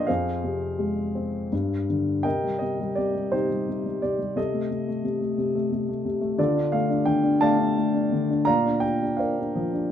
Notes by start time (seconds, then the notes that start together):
Already playing: A#2 F3 A#3 D4 F4 C5 D5 D#5 F5 G5
0.07 F2 G#4 C5 F5
0.44 C3
0.79 G#3
1.15 C4
1.52 G2
1.89 D3
2.23 C3 A#4 D#5 G5
2.44 G3
2.59 C3 D#5
2.79 G3
2.95 C3 D5
3.15 G3
3.32 C3 D#4 G4 C5
3.50 G3
3.69 C3
3.86 G3
4.02 C3 D5
4.19 G3
4.36 C3 A4 D#5
4.53 A3
4.70 C3
4.88 A3
5.04 C3
5.21 A3
5.38 C3
5.55 A3
5.72 C3
5.89 A3
6.05 C3
6.21 A3
6.38 D3 F4 A4 D5
6.56 D4
6.72 A3 F5
6.90 D4
7.06 D3 G5
7.24 D4
7.41 A3 D5 F5 A5
7.77 A3
7.94 D4
8.12 D3
8.30 D4
8.45 D5 F5 A#5
8.49 A#2
8.66 D4
8.80 F4 G5
9.03 D4
9.17 A#4 C5 D5 F5
9.39 D4
9.56 F3
9.74 D4